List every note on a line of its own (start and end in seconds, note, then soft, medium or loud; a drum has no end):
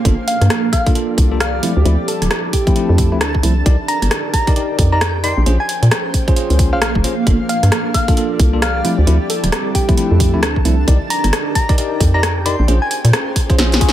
0.00 0.69 A#3 medium
0.00 0.69 F5 medium
0.05 0.16 G1 medium
0.05 3.62 F3 medium
0.05 0.14 A#3 medium
0.05 1.61 A#3 medium
0.05 0.14 D4 medium
0.05 1.61 D4 medium
0.05 0.14 F4 medium
0.05 2.46 G4 medium
0.05 0.14 A4 loud
0.05 3.62 A4 medium
0.05 kick loud
0.05 closed hi-hat medium
0.11 2.46 D5 medium
0.28 0.41 F5 medium
0.28 open hi-hat loud
0.41 0.49 G2 medium
0.41 cross-stick soft
0.41 closed hi-hat medium
0.50 cross-stick loud
0.50 closed hi-hat medium
0.73 0.87 F5 medium
0.73 kick medium
0.73 cross-stick soft
0.73 open hi-hat loud
0.86 0.92 A#3 medium
0.86 0.92 D4 medium
0.86 0.92 F4 medium
0.86 0.92 A4 loud
0.86 kick loud
0.86 open hi-hat medium
0.95 1.28 A#3 medium
0.95 1.28 D4 medium
0.95 1.28 F4 medium
0.95 1.28 A4 medium
0.95 closed hi-hat medium
1.18 1.60 C2 medium
1.18 kick loud
1.18 open hi-hat loud
1.32 1.37 A#3 medium
1.32 1.37 D4 medium
1.32 1.37 F4 medium
1.32 1.37 A4 medium
1.40 1.68 F5 loud
1.40 cross-stick loud
1.40 closed hi-hat medium
1.63 1.72 F3 medium
1.63 1.72 A3 medium
1.63 1.72 C4 medium
1.63 3.64 C4 medium
1.63 3.66 D4 medium
1.63 1.72 E4 medium
1.63 3.64 E4 medium
1.63 open hi-hat loud
1.75 1.84 D2 medium
1.75 4.39 A5 medium
1.85 1.97 D2 loud
1.85 1.95 F3 medium
1.85 1.95 A3 medium
1.85 1.95 C4 medium
1.85 1.95 E4 medium
1.85 closed hi-hat medium
2.08 2.22 A4 medium
2.08 open hi-hat loud
2.22 2.29 D1 medium
2.22 cross-stick soft
2.22 closed hi-hat medium
2.31 cross-stick loud
2.31 closed hi-hat medium
2.53 3.17 G4 loud
2.53 kick medium
2.53 open hi-hat loud
2.67 2.73 F3 medium
2.67 2.73 A3 medium
2.67 2.73 C4 medium
2.67 2.73 E4 loud
2.67 kick loud
2.67 closed hi-hat soft
2.76 3.09 F3 medium
2.76 3.09 A3 medium
2.76 3.09 C4 medium
2.76 3.09 E4 medium
2.76 closed hi-hat medium
2.89 3.13 F2 medium
2.98 kick loud
2.98 open hi-hat loud
3.12 3.41 D2 medium
3.12 3.18 F3 medium
3.12 3.18 A3 medium
3.12 3.18 C4 medium
3.12 3.18 E4 loud
3.21 cross-stick loud
3.21 closed hi-hat medium
3.35 kick medium
3.43 3.63 C2 medium
3.43 3.53 F3 medium
3.43 3.53 A3 medium
3.43 3.53 C4 medium
3.43 3.53 E4 loud
3.43 open hi-hat loud
3.66 3.77 C2 loud
3.66 3.75 D#4 medium
3.66 5.45 D#4 medium
3.66 3.75 G4 medium
3.66 5.45 G4 medium
3.66 3.75 A#4 medium
3.66 5.45 A#4 medium
3.66 3.75 D5 loud
3.66 5.45 D5 medium
3.66 kick loud
3.66 closed hi-hat medium
3.86 6.20 G5 medium
3.86 4.02 A#5 medium
3.86 open hi-hat loud
4.02 4.09 G1 medium
4.02 cross-stick soft
4.02 closed hi-hat medium
4.11 cross-stick loud
4.11 closed hi-hat medium
4.33 4.47 A#5 medium
4.33 kick medium
4.33 cross-stick soft
4.33 open hi-hat loud
4.47 4.53 D#4 medium
4.47 4.53 G4 medium
4.47 4.53 A#4 medium
4.47 4.53 D5 loud
4.47 kick loud
4.47 open hi-hat medium
4.56 4.89 D#4 medium
4.56 4.89 G4 medium
4.56 4.89 A#4 medium
4.56 4.89 D5 medium
4.56 closed hi-hat medium
4.79 5.34 F2 medium
4.79 kick loud
4.79 open hi-hat loud
4.92 4.98 D#4 medium
4.92 4.98 G4 medium
4.92 4.98 A#4 medium
4.92 4.98 D5 loud
4.92 5.01 A#5 medium
5.01 cross-stick loud
5.01 closed hi-hat medium
5.24 5.33 D#4 medium
5.24 5.33 G4 medium
5.24 5.33 A#4 medium
5.24 5.33 D5 medium
5.24 5.38 C6 medium
5.24 open hi-hat medium
5.37 5.45 A#1 medium
5.46 5.58 A#1 loud
5.46 10.84 F3 medium
5.46 7.91 A#3 medium
5.46 7.25 C#4 medium
5.46 5.56 C#4 medium
5.46 5.56 F4 medium
5.46 7.25 G#4 medium
5.46 5.56 G#4 medium
5.46 7.25 C5 medium
5.46 5.56 C5 loud
5.46 closed hi-hat medium
5.59 7.91 F5 medium
5.59 5.66 G#5 medium
5.69 5.78 G#5 medium
5.69 open hi-hat loud
5.83 5.90 A#2 medium
5.83 cross-stick soft
5.83 closed hi-hat medium
5.91 cross-stick loud
5.91 closed hi-hat medium
6.14 kick medium
6.14 open hi-hat loud
6.28 6.34 C#4 medium
6.28 6.34 F4 medium
6.28 6.34 G#4 medium
6.28 6.34 C5 loud
6.28 kick loud
6.28 closed hi-hat soft
6.36 6.70 C#4 medium
6.36 6.70 F4 medium
6.36 6.70 G#4 medium
6.36 6.70 C5 medium
6.36 closed hi-hat medium
6.50 6.74 C#2 medium
6.50 open hi-hat medium
6.59 kick loud
6.59 open hi-hat loud
6.73 6.95 A#1 medium
6.73 6.79 C#4 medium
6.73 6.79 F4 medium
6.73 6.79 G#4 medium
6.73 6.79 C5 loud
6.73 6.78 F5 medium
6.82 6.90 F5 medium
6.82 cross-stick loud
6.82 closed hi-hat medium
6.95 7.03 F1 medium
6.95 kick medium
7.04 7.13 C#4 medium
7.04 7.13 F4 medium
7.04 7.13 G#4 medium
7.04 7.13 C5 medium
7.04 open hi-hat medium
7.27 7.38 G1 loud
7.27 7.36 A#3 medium
7.27 8.83 A#3 medium
7.27 7.36 D4 medium
7.27 8.83 D4 medium
7.27 7.36 F4 medium
7.27 9.68 G4 medium
7.27 7.36 A4 medium
7.27 8.83 A4 medium
7.27 kick loud
7.27 closed hi-hat medium
7.38 9.49 D5 medium
7.49 7.63 F5 medium
7.49 open hi-hat loud
7.63 7.70 G2 medium
7.63 cross-stick soft
7.63 closed hi-hat medium
7.72 cross-stick loud
7.72 closed hi-hat medium
7.94 8.08 F5 medium
7.94 kick medium
7.94 cross-stick soft
7.94 open hi-hat loud
8.08 8.14 A#3 medium
8.08 8.14 D4 medium
8.08 8.14 F4 medium
8.08 8.14 A4 loud
8.08 kick loud
8.08 open hi-hat medium
8.17 8.50 A#3 medium
8.17 8.50 D4 medium
8.17 8.50 F4 medium
8.17 8.50 A4 medium
8.17 closed hi-hat medium
8.39 8.82 C2 medium
8.39 kick loud
8.39 open hi-hat loud
8.53 8.59 A#3 medium
8.53 8.59 D4 medium
8.53 8.59 F4 medium
8.53 8.59 A4 medium
8.62 8.90 F5 loud
8.62 cross-stick loud
8.62 closed hi-hat medium
8.85 8.94 F3 medium
8.85 8.94 A3 medium
8.85 10.86 C4 medium
8.85 8.94 C4 medium
8.85 10.88 D4 medium
8.85 8.94 E4 medium
8.85 10.86 E4 medium
8.85 10.86 A4 medium
8.85 open hi-hat loud
8.98 9.06 D2 medium
9.07 9.19 D2 loud
9.07 9.16 F3 medium
9.07 9.16 A3 medium
9.07 9.16 C4 medium
9.07 9.16 E4 loud
9.07 closed hi-hat medium
9.15 11.61 A5 medium
9.30 9.44 A4 medium
9.30 open hi-hat loud
9.44 9.51 D1 medium
9.44 cross-stick soft
9.44 closed hi-hat medium
9.52 cross-stick loud
9.52 closed hi-hat medium
9.75 10.39 G4 loud
9.75 kick medium
9.75 open hi-hat loud
9.89 9.95 F3 medium
9.89 9.95 A3 medium
9.89 9.95 C4 medium
9.89 9.95 E4 loud
9.89 kick loud
9.89 closed hi-hat soft
9.97 10.30 F3 medium
9.97 10.30 A3 medium
9.97 10.30 C4 medium
9.97 10.30 E4 medium
9.97 closed hi-hat medium
10.11 10.35 F2 medium
10.20 kick loud
10.20 open hi-hat loud
10.34 10.63 D2 medium
10.34 10.40 F3 medium
10.34 10.40 A3 medium
10.34 10.40 C4 medium
10.34 10.40 E4 loud
10.43 cross-stick loud
10.43 closed hi-hat medium
10.56 kick medium
10.65 10.85 C2 medium
10.65 10.74 F3 medium
10.65 10.74 A3 medium
10.65 10.74 C4 medium
10.65 10.74 E4 medium
10.65 open hi-hat loud
10.88 10.99 C2 loud
10.88 12.66 D#4 medium
10.88 10.97 D#4 medium
10.88 12.66 G4 medium
10.88 10.97 G4 medium
10.88 12.66 A#4 medium
10.88 10.97 A#4 medium
10.88 12.66 D5 medium
10.88 10.97 D5 loud
10.88 kick loud
10.88 closed hi-hat medium
10.95 13.41 G5 medium
11.10 11.24 A#5 medium
11.10 open hi-hat loud
11.24 11.31 G1 medium
11.24 cross-stick soft
11.24 closed hi-hat medium
11.33 cross-stick loud
11.33 closed hi-hat medium
11.55 11.69 A#5 medium
11.55 kick medium
11.55 open hi-hat loud
11.69 11.75 D#4 medium
11.69 11.75 G4 medium
11.69 11.75 A#4 medium
11.69 11.75 D5 loud
11.69 kick loud
11.69 open hi-hat medium
11.78 12.11 D#4 medium
11.78 12.11 G4 medium
11.78 12.11 A#4 medium
11.78 12.11 D5 medium
11.78 closed hi-hat medium
12.00 12.55 F2 medium
12.00 kick loud
12.00 open hi-hat loud
12.14 12.20 D#4 medium
12.14 12.20 G4 medium
12.14 12.20 A#4 medium
12.14 12.20 D5 loud
12.14 12.23 A#5 medium
12.23 cross-stick loud
12.23 closed hi-hat medium
12.46 12.55 D#4 medium
12.46 12.55 G4 medium
12.46 12.55 A#4 medium
12.46 12.55 D5 loud
12.46 12.60 C6 medium
12.46 open hi-hat loud
12.59 12.67 A#1 medium
12.68 12.79 A#1 loud
12.68 13.93 A#3 medium
12.68 13.93 C#4 medium
12.68 12.77 C#4 medium
12.68 13.93 F4 medium
12.68 12.77 F4 medium
12.68 13.93 G#4 medium
12.68 12.77 G#4 medium
12.68 13.93 C5 medium
12.68 12.77 C5 loud
12.68 closed hi-hat medium
12.82 13.93 F5 medium
12.82 12.88 G#5 medium
12.91 13.00 G#5 medium
12.91 open hi-hat loud
13.04 13.12 A#2 medium
13.04 cross-stick soft
13.04 closed hi-hat medium
13.13 cross-stick loud
13.13 closed hi-hat medium
13.36 kick medium
13.36 cross-stick soft
13.36 open hi-hat loud
13.50 13.55 C#4 medium
13.50 13.55 F4 medium
13.50 13.55 G#4 medium
13.50 13.55 C5 loud
13.50 kick loud
13.50 closed hi-hat soft
13.58 13.93 A#1 medium
13.58 13.79 C#4 medium
13.58 13.79 F4 medium
13.58 13.79 G#4 medium
13.58 13.79 C5 medium
13.58 snare medium
13.58 closed hi-hat medium
13.72 snare medium
13.72 open hi-hat medium
13.81 13.91 C#4 loud
13.81 13.91 F4 medium
13.81 13.91 G#4 medium
13.81 13.91 C#5 loud
13.81 kick loud
13.81 open hi-hat loud
13.89 snare medium